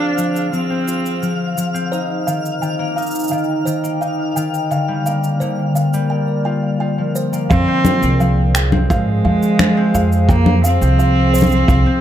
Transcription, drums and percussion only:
0.18 shaker
0.36 shaker
0.53 shaker
0.88 shaker
1.06 shaker
1.23 shaker
1.58 shaker
1.75 shaker
1.93 shaker
2.28 shaker
2.45 shaker
2.63 shaker
2.98 shaker
3.02 shaker
3.06 shaker
3.11 shaker
3.15 shaker
3.19 shaker
3.21 shaker
3.24 shaker
3.27 shaker
3.44 shaker
3.67 shaker
3.84 shaker
4.02 shaker
4.37 shaker
4.54 shaker
4.71 shaker
5.06 shaker
5.24 shaker
5.41 shaker
5.76 shaker
5.94 shaker
7.16 shaker
7.33 shaker
7.51 kick, shaker
7.85 low conga, shaker
8.03 shaker
8.21 shaker
8.55 finger snap, shaker
8.72 low conga
8.90 kick, shaker
9.43 shaker
9.59 finger snap, low conga, shaker
9.95 shaker
10.12 shaker
10.29 kick, shaker
10.46 low conga
10.64 shaker
10.82 shaker
11.00 shaker
11.35 shaker
11.37 shaker
11.40 low conga, shaker
11.43 shaker
11.46 shaker
11.49 shaker
11.52 shaker
11.68 kick, shaker

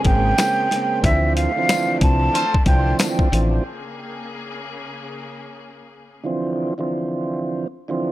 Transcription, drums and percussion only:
0.05 kick, closed hi-hat
0.38 snare, closed hi-hat, tambourine
0.71 snare, closed hi-hat
1.04 kick, closed hi-hat
1.37 closed hi-hat
1.69 snare, closed hi-hat, tambourine
2.01 kick, closed hi-hat
2.35 closed hi-hat
2.54 kick
2.66 kick, closed hi-hat
2.99 snare, closed hi-hat, tambourine
3.19 kick
3.33 closed hi-hat

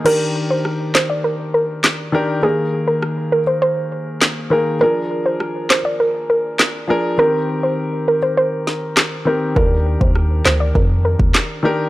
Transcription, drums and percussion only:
0.06 crash
0.65 cross-stick
0.95 snare, clap
1.84 snare, clap
3.02 cross-stick
4.21 snare, clap
5.40 cross-stick
5.70 snare, clap
6.59 snare, clap
8.67 snare
8.97 cross-stick, snare, clap
9.56 kick
10.01 kick
10.15 cross-stick
10.45 snare, clap
10.75 kick
11.20 kick
11.34 snare, clap

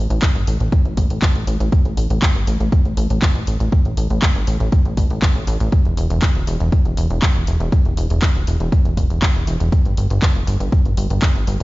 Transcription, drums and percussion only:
0.10 closed hi-hat
0.22 kick, clap, closed hi-hat
0.35 closed hi-hat
0.47 open hi-hat
0.60 closed hi-hat
0.72 kick, closed hi-hat
0.85 closed hi-hat
0.97 kick, open hi-hat
1.10 closed hi-hat
1.22 kick, clap, closed hi-hat
1.35 closed hi-hat
1.47 open hi-hat
1.60 closed hi-hat
1.72 kick, closed hi-hat
1.85 closed hi-hat
1.97 open hi-hat
2.10 closed hi-hat
2.22 kick, clap, closed hi-hat
2.35 closed hi-hat
2.47 open hi-hat
2.60 closed hi-hat
2.72 kick, closed hi-hat
2.85 closed hi-hat
2.97 open hi-hat
3.10 closed hi-hat
3.22 kick, clap, closed hi-hat
3.35 closed hi-hat
3.47 open hi-hat
3.60 closed hi-hat
3.72 kick, closed hi-hat
3.85 closed hi-hat
3.97 open hi-hat
4.10 closed hi-hat
4.22 kick, clap, closed hi-hat
4.35 closed hi-hat
4.47 open hi-hat
4.60 closed hi-hat
4.72 kick, closed hi-hat
4.85 closed hi-hat
4.97 kick, open hi-hat
5.10 closed hi-hat
5.22 kick, clap, closed hi-hat
5.35 closed hi-hat
5.47 open hi-hat
5.60 closed hi-hat
5.72 kick, closed hi-hat
5.85 closed hi-hat
5.97 open hi-hat
6.10 closed hi-hat
6.22 kick, clap, closed hi-hat
6.35 closed hi-hat
6.47 open hi-hat
6.60 closed hi-hat
6.72 kick, closed hi-hat
6.85 closed hi-hat
6.97 open hi-hat
7.10 closed hi-hat
7.22 kick, clap, closed hi-hat
7.35 closed hi-hat
7.47 open hi-hat
7.60 closed hi-hat
7.72 kick, closed hi-hat
7.85 closed hi-hat
7.97 open hi-hat
8.10 closed hi-hat
8.22 kick, clap, closed hi-hat
8.35 closed hi-hat
8.47 open hi-hat
8.60 closed hi-hat
8.72 kick, closed hi-hat
8.85 closed hi-hat
8.97 kick, open hi-hat
9.10 closed hi-hat
9.22 kick, clap, closed hi-hat
9.35 closed hi-hat
9.47 open hi-hat
9.60 closed hi-hat
9.72 kick, closed hi-hat
9.85 closed hi-hat
9.97 open hi-hat
10.10 closed hi-hat
10.22 kick, clap, closed hi-hat
10.35 closed hi-hat
10.47 open hi-hat
10.60 closed hi-hat
10.72 kick, closed hi-hat
10.85 closed hi-hat
10.97 open hi-hat
11.10 closed hi-hat
11.22 kick, clap, closed hi-hat
11.35 closed hi-hat
11.47 open hi-hat

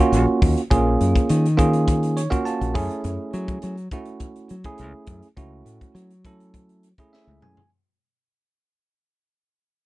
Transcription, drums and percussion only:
0.13 closed hi-hat
0.42 kick, open hi-hat
0.58 closed hi-hat
0.71 kick, closed hi-hat
1.01 closed hi-hat
1.16 kick, closed hi-hat
1.29 closed hi-hat
1.46 closed hi-hat
1.59 kick, closed hi-hat
1.73 closed hi-hat
1.88 kick, closed hi-hat
2.03 closed hi-hat
2.17 closed hi-hat
2.32 kick, closed hi-hat
2.46 closed hi-hat
2.61 closed hi-hat
2.75 kick, open hi-hat
2.91 closed hi-hat
3.04 closed hi-hat
3.33 closed hi-hat
3.48 kick, closed hi-hat
3.62 closed hi-hat
3.77 closed hi-hat
3.91 kick, closed hi-hat
4.06 closed hi-hat
4.20 kick, closed hi-hat
4.36 closed hi-hat
4.49 closed hi-hat
4.64 kick, closed hi-hat
4.78 closed hi-hat
5.07 kick, closed hi-hat
5.23 closed hi-hat
5.37 kick, closed hi-hat
5.66 closed hi-hat
5.81 kick, closed hi-hat
5.96 closed hi-hat
6.10 closed hi-hat
6.25 kick, closed hi-hat
6.40 closed hi-hat
6.54 kick, closed hi-hat
6.69 closed hi-hat
6.83 closed hi-hat
6.98 kick, closed hi-hat
7.13 snare
7.28 high tom
7.42 mid tom
7.57 floor tom

